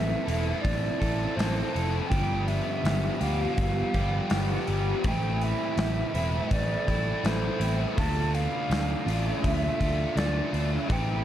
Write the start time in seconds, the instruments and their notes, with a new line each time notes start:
Already playing: fingered electric bass A1, overdriven electric guitar A2 E3 C4 E4 A4, flute E5
0.26 fingered electric bass E1, overdriven electric guitar C4 E4 A4, open hi-hat
0.62 fingered electric bass A1, flute D5, kick, open hi-hat
0.99 fingered electric bass A1, overdriven electric guitar C4 E4 A4, kick, open hi-hat
1.36 fingered electric bass A1, overdriven electric guitar E3 C4 E4 A4, flute C5, open hi-hat
1.40 snare
1.73 fingered electric bass F1, overdriven electric guitar C4 E4 A4, open hi-hat
2.08 fingered electric bass G1, overdriven electric guitar G2 D3 F3 G3 B3 G4, flute G5, kick, open hi-hat
2.48 flute E5, open hi-hat
2.84 fingered electric bass G1, snare, open hi-hat
3.20 fingered electric bass D2, overdriven electric guitar F3 G3 B3 G4, flute F5, open hi-hat
3.58 fingered electric bass G1, kick, open hi-hat
3.93 fingered electric bass G1, overdriven electric guitar F3 G3 B3 G4, kick, open hi-hat
4.30 fingered electric bass G1, overdriven electric guitar F3 G3 B3 G4, snare, open hi-hat
4.67 fingered electric bass G1, overdriven electric guitar F3 G3 B3 G4, open hi-hat
5.04 fingered electric bass A1, overdriven electric guitar A2 E3 A3 C4 E4, flute G5, kick, open hi-hat
5.41 flute E5, open hi-hat
5.77 fingered electric bass A1, snare, open hi-hat
6.14 fingered electric bass E1, overdriven electric guitar A3 C4 E4, open hi-hat
6.51 fingered electric bass A1, flute D5, kick, open hi-hat
6.87 fingered electric bass A1, overdriven electric guitar A3 C4 E4, kick, open hi-hat
7.23 fingered electric bass A1, overdriven electric guitar E3 A3 C4 E4, flute C5, snare, open hi-hat
7.59 fingered electric bass A1, overdriven electric guitar A3 C4 E4, open hi-hat
7.95 fingered electric bass D2, overdriven electric guitar D3 A3 D4 F4, flute A5, kick, open hi-hat
8.35 flute F5, open hi-hat
8.70 fingered electric bass D2, snare, open hi-hat
9.05 fingered electric bass A1, overdriven electric guitar A3 D4 F4, open hi-hat
9.44 fingered electric bass D2, flute E5, kick, open hi-hat
9.79 fingered electric bass D2, overdriven electric guitar A3 D4 F4, kick, open hi-hat
10.15 fingered electric bass D2, overdriven electric guitar D3 A3 D4 F4, flute D5, snare, open hi-hat
10.52 fingered electric bass D2, overdriven electric guitar A3 D4 F4, open hi-hat
10.88 fingered electric bass A1, overdriven electric guitar A2 E3 A3 C4 E4, flute G5, kick, open hi-hat